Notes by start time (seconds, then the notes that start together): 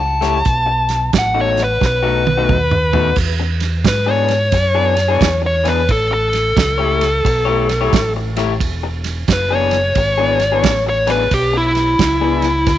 Already playing: C#2 A5
0.00 muted clean electric guitar stroke
0.21 A3 E4 G4 C#5, snare, closed hi-hat
0.45 B1, kick, closed hi-hat
0.66 muted clean electric guitar stroke
0.89 snare, closed hi-hat
1.13 A1, kick, snare, closed hi-hat
1.18 F#5
1.34 B2 A3 D#4 F#4
1.41 C#5
1.57 snare, closed hi-hat
1.64 B4
1.81 B1, muted clean electric guitar stroke, kick, snare
1.86 B4
2.03 B2 A3 D#4 F#4
2.25 muted clean electric guitar stroke, high tom
2.37 B2 A3 D#4 F#4
2.49 D#2, kick, mid tom
2.71 muted clean electric guitar stroke, mid tom
2.93 B2 A3 D#4 F#4, floor tom
3.16 E2, kick, snare, crash
3.40 muted clean electric guitar stroke
3.60 snare, ride
3.84 G#2 B4, kick, snare, ride
4.06 E3 B3 D4 G#4
4.11 C#5
4.28 snare, ride
4.52 F#2, muted clean electric guitar stroke, kick, snare, ride
4.75 E3 B3 D4 G#4
4.97 muted clean electric guitar stroke, snare, ride
5.08 E3 B3 D4 G#4
5.21 E2, kick, snare, ride
5.42 muted clean electric guitar stroke
5.46 C#5
5.64 E3 B3 D4 G#4, snare, ride
5.69 B4
5.89 A1 A4, kick, ride
6.11 A4, muted clean electric guitar stroke
6.33 snare, ride
6.57 C#2, kick, snare, ride
6.78 A3 E4 G4 C#5
7.01 snare, ride
7.25 B1, muted clean electric guitar stroke, kick, ride
7.45 A3 E4 G4 C#5
7.69 muted clean electric guitar stroke, snare, ride
7.81 A3 E4 G4 C#5
7.93 A1, kick, snare, ride
8.16 muted clean electric guitar stroke
8.37 A3 E4 G4 C#5, snare, ride
8.60 E1, kick, ride
8.83 muted clean electric guitar stroke
9.04 snare, ride
9.28 F#1, kick, snare, ride
9.33 B4
9.51 E3 B3 D4 G#4
9.55 C#5
9.71 snare, ride
9.95 G#1, muted clean electric guitar stroke, kick, ride
10.18 E3 B3 D4 G#4
10.39 muted clean electric guitar stroke, snare, ride
10.52 E3 B3 D4 G#4
10.63 A1, kick, snare, ride
10.87 C#5, muted clean electric guitar stroke
11.07 E3 B3 D4 G#4, snare, ride
11.11 B4
11.31 B1 G4, kick, snare, ride
11.53 E4, muted clean electric guitar stroke
11.75 snare, ride
11.99 C#2, kick, snare, ride
12.21 E3 B3 D4 G#4
12.42 snare, ride
12.66 D2, muted clean electric guitar stroke, kick, snare, ride